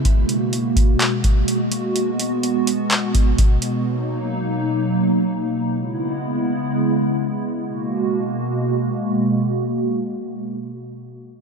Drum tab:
HH |xxxxxxxx|xxxxxxxx|--------|--------|
CP |----x---|----x---|--------|--------|
BD |o--o-o--|-----oo-|--------|--------|

HH |--------|--------|
CP |--------|--------|
BD |--------|--------|